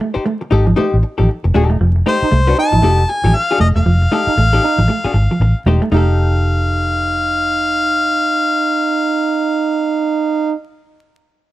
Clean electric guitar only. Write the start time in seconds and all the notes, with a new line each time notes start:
0.01 A3
0.26 A3
0.42 muted clean electric guitar stroke
0.67 F3
0.78 A3
0.93 muted clean electric guitar stroke
1.19 F3
1.29 muted clean electric guitar stroke
1.55 A3
1.70 A3
1.81 F3
1.96 muted clean electric guitar stroke
2.06 A3
2.31 A3
2.47 muted clean electric guitar stroke
2.72 F3
2.82 A3
2.98 muted clean electric guitar stroke
3.24 F3
3.34 muted clean electric guitar stroke
3.60 A3
3.76 A3
3.86 F3
4.02 muted clean electric guitar stroke
4.12 A3
4.38 A3
4.53 muted clean electric guitar stroke
4.78 F3
4.88 A3
5.04 muted clean electric guitar stroke
5.31 F3
5.41 muted clean electric guitar stroke
5.66 A3
5.82 A3
5.92 A3